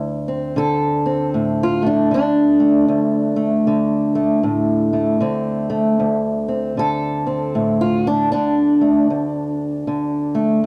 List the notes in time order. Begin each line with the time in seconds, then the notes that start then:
Already playing: D2
0.28 C4
0.56 D3 A4
1.06 C4
1.34 A2
1.63 F4
1.82 A3
1.87 D4
2.11 D3 D4
2.60 A3
2.88 D2
3.36 A3
3.67 D3
4.15 A3
4.43 A2
4.93 A3
5.20 D3 C4
5.70 A3
6.00 D2
6.48 C4
6.77 D3 A4
7.26 C4
7.55 A2
7.81 F4
8.07 D4
8.32 D3 D4
8.81 A3
9.10 D2
9.87 D3
10.35 A3